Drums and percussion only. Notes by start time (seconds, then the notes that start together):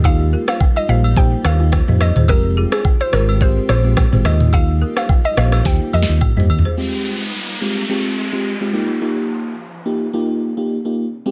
0.04 kick, high agogo, shaker
0.31 shaker
0.48 cross-stick, high agogo, shaker
0.60 kick, low woodblock, shaker
0.76 high agogo
0.88 shaker
1.04 high agogo, shaker
1.16 kick, shaker
1.45 cross-stick, high agogo, shaker
1.60 shaker
1.72 kick, cross-stick, high agogo, low woodblock, shaker
1.88 mid tom
2.00 cross-stick, high agogo, shaker
2.16 mid tom, shaker
2.28 kick, high agogo, shaker
2.56 shaker
2.72 cross-stick, high agogo, shaker
2.85 kick, low woodblock, shaker
3.01 high agogo
3.12 cross-stick, shaker
3.28 high agogo, shaker
3.41 kick, shaker
3.69 cross-stick, high agogo, shaker
3.84 shaker
3.97 kick, cross-stick, high agogo, low woodblock, shaker
4.13 mid tom
4.24 cross-stick, high agogo, shaker
4.40 mid tom, shaker
4.53 kick, high agogo, shaker
4.80 shaker
4.97 cross-stick, high agogo, shaker
5.09 kick, low woodblock, shaker
5.25 high agogo
5.37 cross-stick, shaker
5.52 cross-stick, high agogo, shaker
5.65 kick, snare, shaker
5.93 open hi-hat, high agogo, shaker
6.02 snare
6.08 shaker
6.21 kick, mid tom, high agogo, low woodblock, shaker
6.40 floor tom
6.49 high agogo, shaker
6.59 floor tom
6.65 shaker